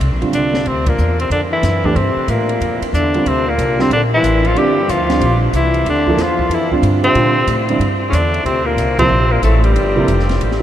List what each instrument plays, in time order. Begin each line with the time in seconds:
0.00 upright bass C2, ride
0.11 upright bass A#1
0.21 upright bass G1, grand piano D3 G3 C4 F4, ride
0.33 upright bass C2, trombone D3, tenor saxophone D4, hi-hat pedal, ride
0.54 snare
0.66 upright bass D2, trombone C3, tenor saxophone C4, ride
0.86 trombone A#2, tenor saxophone A#3, kick, ride
0.98 upright bass E2, hi-hat pedal
1.19 trombone C3, tenor saxophone C4, ride
1.30 upright bass F2, trombone D3, tenor saxophone D4, ride
1.51 trombone E3, tenor saxophone E4
1.63 upright bass F#2, snare, hi-hat pedal, ride
1.84 trombone D3, grand piano E3 A3 D4 G4, tenor saxophone D4, kick
1.95 upright bass G2, trombone C3, tenor saxophone C4, ride
2.16 muted upright bass stroke
2.28 upright bass A2, trombone A#2, tenor saxophone A#3, hi-hat pedal, ride
2.49 ride
2.60 upright bass F2, ride
2.81 muted upright bass stroke, ride
2.93 upright bass E2, trombone D3, tenor saxophone D4, hi-hat pedal
3.14 grand piano D3 G3 C4 F4, ride
3.25 upright bass D2, trombone C3, tenor saxophone C4, ride
3.49 trombone A#2, tenor saxophone A#3
3.58 upright bass C2, hi-hat pedal, ride
3.79 trombone C3, grand piano D3 G3 C4 F4, tenor saxophone C4, snare
3.90 upright bass A#1, trombone D3, tenor saxophone D4, ride
4.14 trombone E3, tenor saxophone E4
4.23 upright bass A1, hi-hat pedal, ride
4.45 trombone F3, tenor saxophone F4, ride
4.55 upright bass G1, grand piano D3 G3 C4 F4, trombone G3, tenor saxophone G4, ride
4.88 upright bass D2, trombone F3, tenor saxophone F4, hi-hat pedal, ride
5.09 grand piano D3 G3 C4 F4, snare, ride
5.20 upright bass A#1, ride
5.53 upright bass C2, trombone E3, tenor saxophone E4, hi-hat pedal, ride
5.74 ride
5.85 upright bass D2, trombone D3, ride
5.90 tenor saxophone D4
6.07 grand piano F3 A#3 E4 A4, kick
6.17 upright bass E2, trombone F3, snare, hi-hat pedal, ride
6.22 tenor saxophone F4
6.39 kick
6.49 upright bass F2, trombone E3, ride
6.54 tenor saxophone E4
6.71 grand piano D3 G3 C4 F4, kick
6.82 upright bass G2, hi-hat pedal, ride
7.03 trombone C3, tenor saxophone C4, ride
7.15 upright bass A#2, grand piano D3 G3 C4 F4, ride
7.47 upright bass A2, hi-hat pedal, ride
7.69 grand piano D3 G3 C4 E4, ride
7.79 upright bass G2, ride
8.09 upright bass E2, trombone C#3, tenor saxophone C#4
8.13 trombone D3, tenor saxophone D4, hi-hat pedal, ride
8.34 ride
8.45 upright bass D2, trombone C3, tenor saxophone C4, ride
8.66 trombone A#2, tenor saxophone A#3
8.77 upright bass C2, hi-hat pedal, ride
8.98 grand piano C3 F3 A#3 E4, trombone C3, tenor saxophone C4, kick, ride
9.09 upright bass A#1
9.32 trombone A#2, tenor saxophone A#3
9.42 upright bass A1, trombone A2, tenor saxophone A3, hi-hat pedal, ride
9.64 trombone G2, tenor saxophone G3, ride
9.75 upright bass G1, ride
9.96 grand piano C3 F3 A#3 E4
10.08 upright bass F1, hi-hat pedal, ride
10.19 snare
10.29 snare, ride
10.40 upright bass A1, ride
10.51 snare